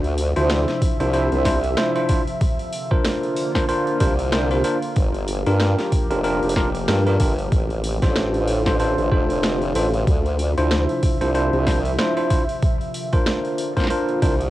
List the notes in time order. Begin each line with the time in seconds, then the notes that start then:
Already playing: D2 C3 F3 E5
0.04 open hi-hat
0.18 open hi-hat
0.36 D2 D4 E4 F4 C5, open hi-hat
0.49 snare, open hi-hat
0.68 snare, open hi-hat
0.82 kick, open hi-hat
1.00 C2 D4 E4 F4 C5, open hi-hat
1.13 D4 E4 F4 C5, open hi-hat
1.32 C2, open hi-hat
1.45 D4 E4 F4 C5, kick, snare, open hi-hat
1.64 open hi-hat
1.77 D4 E4 F4 C5, snare, open hi-hat
1.95 D4 E4 F4 C5, open hi-hat
2.09 D4 E4 F4 C5, kick, open hi-hat
2.27 open hi-hat
2.40 D3 A#3 F4, kick, open hi-hat
2.59 open hi-hat
2.73 open hi-hat
2.91 D4 F4 A#4 C5, kick
3.05 snare, open hi-hat
3.23 open hi-hat
3.36 open hi-hat
3.55 D4 F4 A#4 C5, kick, snare, open hi-hat
3.69 D4 F4 A#4 C5, open hi-hat
3.87 open hi-hat
4.00 C2 D4 F4 A#4 C5, kick, open hi-hat
4.19 open hi-hat
4.32 D4 F4 A#4 C5, snare, open hi-hat
4.51 D4 F4 A#4 C5, open hi-hat
4.64 D4 F4 A#4 C5, open hi-hat
4.82 open hi-hat
4.96 G1 F3 A#3 G4, kick, open hi-hat
5.14 open hi-hat
5.28 open hi-hat
5.46 G2 D4 F4 G4 A#4, open hi-hat
5.60 snare, open hi-hat
5.79 snare, open hi-hat
5.92 kick, open hi-hat
6.10 F1 D4 F4 G4 A#4, open hi-hat
6.24 D4 F4 G4 A#4, open hi-hat
6.43 F1, open hi-hat
6.49 open hi-hat
6.56 D4 F4 G4 A#4, kick, snare
6.75 open hi-hat
6.88 G2 D4 F4 G4 A#4, snare, open hi-hat
7.07 D4 F4 G4 A#4, open hi-hat
7.20 G1 D4 F4 G4 A#4, kick, open hi-hat
7.39 open hi-hat
7.51 A1 D3 A3 F4, kick, open hi-hat
7.70 open hi-hat
7.84 open hi-hat
8.02 A1 D4 F4 A4 C5, kick, snare, open hi-hat
8.16 snare, open hi-hat
8.34 open hi-hat
8.48 open hi-hat
8.66 D4 F4 A4 C5, kick, snare, open hi-hat
8.80 D4 F4 A4 C5, open hi-hat
8.98 A1, open hi-hat
9.12 F1 D4 F4 A4 C5, kick
9.30 open hi-hat
9.43 snare, open hi-hat
9.62 open hi-hat
9.75 A1 D4 F4 A4 C5, open hi-hat
9.94 open hi-hat
10.07 D2 C3 F3 E5, kick, open hi-hat
10.26 open hi-hat
10.39 open hi-hat
10.58 D2 D4 E4 F4 C5, open hi-hat
10.71 snare, open hi-hat
10.89 open hi-hat
11.03 kick, open hi-hat
11.21 C2 D4 E4 F4 C5, open hi-hat
11.35 D4 E4 F4 C5, open hi-hat
11.53 C2, open hi-hat
11.67 D4 E4 F4 C5, kick, snare, open hi-hat
11.85 open hi-hat
11.99 D4 E4 F4 C5, snare, open hi-hat
12.17 D4 E4 F4 C5, open hi-hat
12.30 D4 E4 F4 C5, kick, open hi-hat
12.49 open hi-hat
12.62 D3 A#3 F4, kick, open hi-hat
12.81 open hi-hat
12.94 open hi-hat
13.13 D4 F4 A#4 C5, kick, open hi-hat
13.26 snare, open hi-hat
13.45 open hi-hat
13.58 open hi-hat
13.77 D4 F4 A#4 C5, kick, snare, open hi-hat
13.80 snare
13.84 snare
13.87 D4 F4 A#4 C5, snare, open hi-hat
14.09 open hi-hat
14.22 C2 D4 F4 A#4 C5, kick, open hi-hat
14.41 open hi-hat